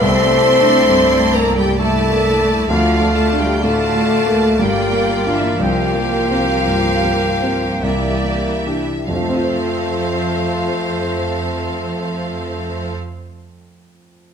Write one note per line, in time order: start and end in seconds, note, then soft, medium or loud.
0.01 2.66 C2 medium
0.01 2.70 C2 medium
0.01 1.31 C3 medium
0.01 1.52 A3 medium
0.01 1.76 A3 medium
0.01 1.32 C4 medium
0.01 1.79 E4 medium
0.01 1.32 C5 medium
0.01 1.76 D5 medium
0.01 1.52 E5 medium
0.01 1.32 C6 medium
0.30 0.77 A3 soft
0.60 1.08 D4 soft
0.89 1.37 G2 soft
1.20 1.67 A3 soft
1.34 1.57 A#3 medium
1.34 1.57 A#4 medium
1.34 1.57 A#5 medium
1.50 1.80 A#3 soft
1.56 1.79 G3 medium
1.56 1.80 G4 medium
1.56 1.79 G5 medium
1.79 2.66 A3 soft
1.79 2.27 A3 soft
1.79 2.68 A3 soft
1.79 2.70 A3 medium
1.79 2.69 E4 soft
1.79 2.68 A4 medium
1.79 2.68 D5 soft
1.79 2.73 E5 medium
1.79 2.68 A5 medium
2.09 2.39 A#3 soft
2.40 2.70 A3 soft
2.69 4.56 D2 medium
2.69 4.55 D2 medium
2.69 3.15 F3 medium
2.69 3.62 A3 soft
2.69 3.63 A3 soft
2.69 3.17 F4 medium
2.69 3.63 F4 soft
2.69 3.61 D5 soft
2.69 3.15 F5 medium
2.69 3.63 F5 medium
3.00 3.51 A3 soft
3.16 3.39 A3 medium
3.16 3.40 A4 medium
3.16 3.40 A5 medium
3.33 3.83 D4 soft
3.40 3.64 G3 soft
3.40 3.64 G4 medium
3.40 3.64 G5 soft
3.62 4.14 A2 soft
3.62 4.59 A3 medium
3.62 4.61 A3 soft
3.62 4.58 A3 medium
3.62 4.58 F4 medium
3.62 4.58 A4 medium
3.62 4.57 D5 soft
3.62 4.57 F5 soft
3.62 4.60 A5 medium
3.96 4.46 A3 soft
4.26 4.59 A#3 soft
4.58 5.60 G1 medium
4.58 5.57 G2 soft
4.58 5.34 G3 soft
4.58 5.60 A#3 soft
4.58 5.58 F4 soft
4.58 5.35 G4 medium
4.58 5.57 D5 soft
4.58 5.63 F5 soft
4.58 5.35 G5 medium
4.92 5.46 A#3 soft
5.26 5.57 D4 soft
5.26 5.57 F4 soft
5.34 5.60 E3 soft
5.34 5.61 E4 medium
5.34 5.61 E5 soft
5.59 7.79 C2 soft
5.59 7.82 C2 soft
5.59 7.79 F3 medium
5.59 7.79 A#3 soft
5.59 7.80 A#3 soft
5.59 7.65 F4 medium
5.59 7.82 G4 soft
5.59 7.84 C5 soft
5.59 7.84 F5 medium
5.59 7.86 G5 medium
5.94 6.52 A#3 soft
6.31 6.90 C4 soft
6.67 7.28 G2 soft
7.04 7.67 A#3 soft
7.43 7.83 C4 soft
7.82 9.05 C2 soft
7.82 8.80 C2 soft
7.82 9.07 E3 soft
7.82 8.80 A#3 soft
7.82 8.64 A#3 soft
7.82 9.06 E4 soft
7.82 8.80 G4 soft
7.82 8.66 D5 soft
7.82 8.82 D5 soft
7.82 9.07 E5 soft
8.24 8.93 A#3 soft
8.66 9.05 D4 soft
8.66 9.05 G4 soft
9.08 12.90 F2 soft
9.08 12.91 F2 soft
9.08 12.92 F2 soft
9.08 12.92 F3 soft
9.08 12.91 A3 soft
9.08 12.92 C4 soft
9.08 12.91 F4 medium
9.08 12.93 A4 soft
9.08 12.93 C5 soft
9.08 12.92 F5 soft
9.15 12.98 F3 soft
9.22 13.04 A3 soft
9.29 13.11 C4 soft
9.36 13.19 F4 soft
9.44 13.26 C5 soft